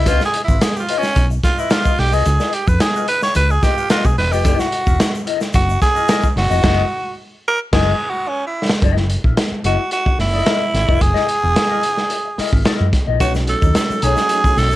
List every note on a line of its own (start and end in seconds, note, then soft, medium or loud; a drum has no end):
0.06 0.18 C#2 loud
0.06 0.22 F4 medium
0.06 0.25 F4 medium
0.06 0.22 B4 loud
0.06 0.20 D#5 loud
0.06 kick loud
0.06 closed hi-hat loud
0.06 shaker medium
0.21 muted clean electric guitar stroke soft
0.21 snare soft
0.21 shaker medium
0.25 0.42 G#4 medium
0.34 muted clean electric guitar stroke soft
0.34 closed hi-hat medium
0.44 0.64 E4 medium
0.44 shaker medium
0.48 0.59 G#1 medium
0.48 0.60 F4 medium
0.48 0.60 B4 medium
0.48 0.59 F5 medium
0.48 kick medium
0.61 0.78 G#4 medium
0.61 snare loud
0.61 closed hi-hat loud
0.61 shaker medium
0.76 0.81 G4 medium
0.76 muted clean electric guitar stroke medium
0.76 shaker medium
0.80 0.99 F4 medium
0.89 1.04 F4 medium
0.89 1.03 B4 medium
0.89 1.02 D#5 medium
0.89 closed hi-hat loud
0.98 1.25 C#4 medium
1.02 muted clean electric guitar stroke soft
1.02 snare soft
1.02 shaker medium
1.15 1.38 B1 loud
1.15 muted clean electric guitar stroke soft
1.15 kick medium
1.15 closed hi-hat medium
1.15 shaker medium
1.31 muted clean electric guitar stroke soft
1.31 shaker soft
1.43 1.60 F4 medium
1.43 kick medium
1.43 snare soft
1.43 closed hi-hat medium
1.43 shaker soft
1.58 1.73 E4 medium
1.58 1.69 F4 medium
1.58 1.70 B4 medium
1.58 1.71 D#5 medium
1.58 shaker medium
1.70 1.91 F4 medium
1.70 2.01 F4 loud
1.70 1.92 B4 medium
1.70 1.92 D#5 loud
1.70 snare loud
1.70 closed hi-hat medium
1.70 shaker medium
1.85 kick medium
1.85 shaker medium
1.98 2.13 B1 medium
1.98 2.15 G4 loud
1.98 snare soft
1.98 open hi-hat medium
2.12 2.23 C2 medium
2.12 2.24 F4 medium
2.12 2.55 G#4 medium
2.12 2.24 B4 medium
2.12 2.23 D#5 medium
2.12 shaker medium
2.26 2.37 C#2 loud
2.26 muted clean electric guitar stroke soft
2.26 closed hi-hat medium
2.26 shaker medium
2.40 2.52 F4 medium
2.40 2.53 B4 medium
2.40 2.53 D#5 medium
2.40 snare soft
2.40 shaker medium
2.53 2.69 G4 medium
2.53 muted clean electric guitar stroke medium
2.53 closed hi-hat medium
2.67 2.78 F2 medium
2.67 2.80 B4 medium
2.67 muted clean electric guitar stroke soft
2.67 kick medium
2.67 shaker medium
2.80 3.06 G#4 loud
2.80 muted clean electric guitar stroke soft
2.80 snare loud
2.80 closed hi-hat loud
2.80 shaker medium
2.95 3.07 F4 medium
2.95 3.07 B4 medium
2.95 3.08 D#5 medium
2.95 shaker medium
3.08 3.22 B4 loud
3.08 muted clean electric guitar stroke soft
3.08 closed hi-hat loud
3.22 3.35 C#5 loud
3.22 muted clean electric guitar stroke soft
3.22 snare soft
3.22 shaker medium
3.35 3.57 C#2 loud
3.35 3.53 B4 loud
3.35 muted clean electric guitar stroke soft
3.35 closed hi-hat medium
3.35 shaker medium
3.50 3.65 G#4 loud
3.50 muted clean electric guitar stroke medium
3.50 shaker soft
3.62 3.74 F4 medium
3.62 3.90 G4 loud
3.62 3.75 B4 medium
3.62 3.75 D#5 medium
3.62 kick medium
3.62 snare soft
3.62 closed hi-hat medium
3.62 shaker medium
3.77 3.89 F4 medium
3.77 3.88 B4 medium
3.77 3.88 F5 medium
3.77 shaker medium
3.90 4.05 F4 medium
3.90 4.07 F4 loud
3.90 4.06 B4 medium
3.90 4.06 D#5 medium
3.90 snare loud
3.90 closed hi-hat medium
3.90 shaker medium
4.04 4.15 B1 medium
4.04 4.17 G#4 medium
4.04 kick medium
4.04 shaker medium
4.18 4.32 E1 medium
4.18 4.34 B4 loud
4.18 muted clean electric guitar stroke soft
4.18 snare soft
4.18 open hi-hat medium
4.31 4.45 F1 medium
4.31 4.43 F4 medium
4.31 4.61 G4 medium
4.31 4.43 B4 medium
4.31 4.42 D#5 medium
4.31 shaker medium
4.45 4.56 F#1 loud
4.45 4.65 E4 loud
4.45 4.59 A#4 medium
4.45 4.58 D#5 loud
4.45 kick loud
4.45 closed hi-hat loud
4.45 shaker medium
4.59 5.15 F#4 medium
4.59 muted clean electric guitar stroke soft
4.59 snare soft
4.59 shaker medium
4.72 muted clean electric guitar stroke soft
4.72 closed hi-hat medium
4.86 4.97 E1 medium
4.86 4.98 E4 medium
4.86 4.98 A#4 medium
4.86 4.97 E5 medium
4.86 kick medium
4.86 shaker medium
5.00 snare loud
5.00 closed hi-hat medium
5.00 shaker medium
5.13 muted clean electric guitar stroke medium
5.13 shaker medium
5.26 5.42 E4 medium
5.26 5.41 A#4 medium
5.26 5.40 D#5 medium
5.26 closed hi-hat loud
5.41 muted clean electric guitar stroke soft
5.41 snare soft
5.41 shaker medium
5.53 5.76 F#1 loud
5.53 5.80 F#4 loud
5.53 muted clean electric guitar stroke soft
5.53 kick medium
5.53 closed hi-hat medium
5.53 shaker medium
5.69 muted clean electric guitar stroke soft
5.69 shaker medium
5.81 6.33 G#4 loud
5.81 kick medium
5.81 snare soft
5.81 closed hi-hat medium
5.81 shaker medium
5.96 6.08 E4 medium
5.96 6.08 A#4 medium
5.96 6.09 D#5 medium
5.96 shaker medium
6.08 6.24 E4 medium
6.08 6.24 A#4 medium
6.08 6.25 D#5 loud
6.08 snare loud
6.08 closed hi-hat loud
6.08 shaker medium
6.23 kick medium
6.23 shaker medium
6.36 6.48 F#1 loud
6.36 7.15 F#4 loud
6.36 muted clean electric guitar stroke soft
6.36 snare soft
6.36 open hi-hat medium
6.50 6.63 F1 medium
6.50 6.62 E4 medium
6.50 6.62 A#4 medium
6.50 6.61 D#5 medium
6.50 shaker medium
6.63 6.83 F#1 loud
6.63 6.83 E4 loud
6.63 6.83 A#4 loud
6.63 6.82 D#5 loud
6.63 kick loud
6.63 snare loud
6.63 crash medium
7.48 7.60 A#4 loud
7.72 7.92 F#1 loud
7.72 7.92 E4 loud
7.72 8.11 G#4 loud
7.72 7.92 A#4 loud
7.72 7.92 D#5 loud
7.72 kick loud
7.72 snare loud
7.72 crash medium
8.10 8.29 F#4 medium
8.28 8.46 C#4 medium
8.47 8.72 E4 medium
8.69 snare loud
8.82 9.15 F#1 loud
8.82 9.03 E4 medium
8.82 8.97 A#4 medium
8.82 8.96 D#5 medium
8.82 kick loud
8.82 closed hi-hat medium
8.97 muted clean electric guitar stroke soft
8.97 snare soft
9.10 muted clean electric guitar stroke soft
9.10 closed hi-hat medium
9.24 9.34 A#1 medium
9.24 9.36 E4 soft
9.24 9.35 A#4 medium
9.24 9.35 E5 medium
9.24 kick medium
9.37 muted clean electric guitar stroke soft
9.37 snare loud
9.37 closed hi-hat loud
9.52 muted fingered electric bass stroke soft
9.52 muted clean electric guitar stroke soft
9.64 9.76 F#1 loud
9.64 9.80 E4 medium
9.64 9.90 F#4 medium
9.64 9.78 A#4 medium
9.64 9.77 D#5 medium
9.64 closed hi-hat loud
9.78 muted clean electric guitar stroke soft
9.91 10.18 F#4 medium
9.91 muted clean electric guitar stroke soft
9.91 closed hi-hat medium
10.06 muted clean electric guitar stroke medium
10.06 kick medium
10.19 10.41 F#1 medium
10.19 11.03 E4 loud
10.19 snare soft
10.19 open hi-hat medium
10.33 10.44 E4 medium
10.33 10.45 A#4 medium
10.33 10.46 D#5 medium
10.45 10.61 E4 medium
10.45 10.62 A#4 loud
10.45 10.62 D#5 loud
10.45 snare loud
10.45 closed hi-hat medium
10.73 10.85 G#1 medium
10.73 muted clean electric guitar stroke soft
10.73 snare soft
10.73 closed hi-hat medium
10.87 10.99 F1 medium
10.87 10.99 E4 medium
10.87 10.99 A#4 medium
10.87 10.99 D#5 medium
10.87 kick loud
11.00 11.13 F#1 medium
11.00 12.66 G#4 loud
11.00 muted clean electric guitar stroke soft
11.00 kick loud
11.00 closed hi-hat loud
11.14 11.26 E4 medium
11.14 11.27 A#4 medium
11.14 11.27 D#5 medium
11.14 snare soft
11.27 muted clean electric guitar stroke soft
11.27 closed hi-hat medium
11.42 11.54 E1 medium
11.42 muted clean electric guitar stroke soft
11.56 snare loud
11.56 closed hi-hat loud
11.69 11.82 E4 medium
11.69 11.82 A#4 medium
11.69 11.83 D#5 medium
11.83 muted clean electric guitar stroke soft
11.83 closed hi-hat loud
11.97 muted clean electric guitar stroke soft
11.97 snare soft
12.10 muted clean electric guitar stroke soft
12.10 closed hi-hat medium
12.25 muted clean electric guitar stroke soft
12.38 12.50 E4 medium
12.38 12.51 A#4 medium
12.38 12.51 D#5 medium
12.38 muted fingered electric bass stroke soft
12.38 snare soft
12.38 open hi-hat medium
12.52 12.63 G#1 medium
12.52 12.63 E4 medium
12.52 12.64 A#4 medium
12.52 12.63 E5 medium
12.52 kick medium
12.65 12.86 E4 medium
12.65 12.86 A#4 loud
12.65 12.86 D#5 medium
12.65 snare loud
12.65 closed hi-hat medium
12.80 12.90 F#2 medium
12.93 kick medium
12.93 snare soft
12.93 closed hi-hat medium
13.07 13.20 A#1 medium
13.07 13.19 E4 soft
13.07 13.19 A#4 medium
13.07 13.18 D#5 medium
13.20 13.53 B1 loud
13.20 14.76 F#3 medium
13.20 14.76 A3 medium
13.20 14.76 C#4 medium
13.20 14.76 D#4 medium
13.20 13.36 D#4 medium
13.20 13.33 F#4 loud
13.20 13.34 A4 medium
13.20 13.33 C#5 loud
13.20 kick loud
13.20 closed hi-hat medium
13.20 shaker medium
13.34 muted clean electric guitar stroke soft
13.34 snare soft
13.34 shaker medium
13.47 13.74 A4 medium
13.47 muted clean electric guitar stroke soft
13.47 closed hi-hat medium
13.62 13.73 D#2 medium
13.62 13.74 D#4 medium
13.62 13.73 A4 medium
13.62 13.73 D#5 medium
13.62 kick medium
13.62 shaker soft
13.75 14.04 A4 loud
13.75 snare loud
13.75 closed hi-hat medium
13.75 shaker medium
13.90 muted fingered electric bass stroke soft
13.90 muted clean electric guitar stroke soft
13.90 shaker medium
14.02 14.14 B1 loud
14.02 14.18 D#4 medium
14.02 14.59 G#4 loud
14.02 14.17 A4 medium
14.02 14.16 C#5 loud
14.02 closed hi-hat medium
14.02 shaker medium
14.17 muted clean electric guitar stroke soft
14.17 snare soft
14.17 shaker medium
14.29 muted clean electric guitar stroke soft
14.29 closed hi-hat medium
14.29 shaker medium
14.44 muted clean electric guitar stroke soft
14.44 kick medium
14.44 shaker medium
14.57 14.76 B1 medium
14.57 14.76 A4 loud
14.57 snare soft
14.57 open hi-hat medium
14.57 shaker medium
14.72 14.76 C#5 medium
14.72 shaker medium